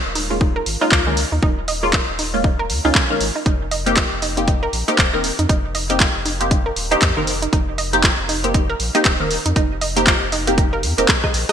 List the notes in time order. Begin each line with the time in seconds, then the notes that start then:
Already playing: G#3 A#3 C#4 F4
0.05 D#1
0.15 D#4, open hi-hat
0.30 G#3 A#3 C#4 F4
0.41 D#4, kick
0.56 A#4
0.66 G#1, open hi-hat
0.81 G#3 A#3 C#4 D#4 F4
0.92 C#2, kick, clap
1.06 D#3 G#3 A#3 C#4 A#4
1.17 open hi-hat
1.32 D#2 D#4
1.42 D#1 D#4, kick
1.68 D#5, open hi-hat
1.83 G#3 A#3 C#4 F4
1.93 F4, kick, clap
2.08 D#1
2.19 D#4, open hi-hat
2.34 G#3 A#3 C#4 F4
2.44 D#4, kick
2.59 A#4
2.70 D#2, open hi-hat
2.84 C#2 G#3 A#3 C#4 D#4 F4
2.95 kick, clap
3.10 D#3 G#3 A#3 C#4 A#4
3.20 G#1, open hi-hat
3.36 D#4
3.46 F1 D#4, kick, closed hi-hat
3.71 D#5, open hi-hat
3.86 A#3 C4 D#4 G4, closed hi-hat
3.97 F4, kick, clap, closed hi-hat
4.12 F1
4.22 D#4, open hi-hat
4.37 A#3 C4 D#4 G4, closed hi-hat
4.48 D#4, kick, closed hi-hat
4.63 A#4
4.73 A#1, open hi-hat
4.88 A#3 C4 D#4 G4, closed hi-hat
4.98 D#1, kick, clap, closed hi-hat
5.13 D#3 A#3 C4 D#4 A#4
5.24 open hi-hat
5.39 F2 D#4, closed hi-hat
5.49 F1 D#4, kick, closed hi-hat
5.75 D#5, open hi-hat
5.89 A#3 C4 D#4 G4, closed hi-hat
6.00 F4, kick, clap, closed hi-hat
6.15 F1
6.25 D#4, open hi-hat
6.40 A#3 C4 D#4 G4, closed hi-hat
6.51 D#4, kick, closed hi-hat
6.66 A#4
6.76 D#1, open hi-hat
6.91 A#3 C4 D#4 G4, closed hi-hat
7.02 F2, kick, clap, closed hi-hat
7.17 F1 D#3 A#3 C4 D#4 A#4
7.27 open hi-hat
7.42 D#4, closed hi-hat
7.53 F1 D#4, kick, closed hi-hat
7.78 D#5, open hi-hat
7.93 A#3 C4 D#4 G4, closed hi-hat
8.03 F4, kick, clap, closed hi-hat
8.19 F1
8.29 D#4, open hi-hat
8.44 A#3 C4 D#4 G4, closed hi-hat
8.54 D#4, kick, closed hi-hat
8.69 A#4
8.80 A#1, open hi-hat
8.95 A#3 C4 D#4 G4, closed hi-hat
9.05 D#1, kick, clap, closed hi-hat
9.20 D#3 A#3 C4 D#4 A#4
9.31 open hi-hat
9.46 F2 D#4, closed hi-hat
9.56 F1 D#4, kick, closed hi-hat
9.81 D#5, open hi-hat
9.96 A#3 C4 D#4 G4, closed hi-hat
10.07 F4, kick, clap, closed hi-hat
10.22 F1
10.32 D#4, open hi-hat
10.47 A#3 C4 D#4 G4, closed hi-hat
10.58 D#4, kick, closed hi-hat
10.73 A#4
10.83 F2, open hi-hat
10.98 D#1 A#3 C4 D#4 G4 A#4, closed hi-hat
11.08 kick, cross-stick, clap, closed hi-hat
11.24 D#5, kick, cross-stick
11.34 A#1, open hi-hat
11.49 D#5, cross-stick, closed hi-hat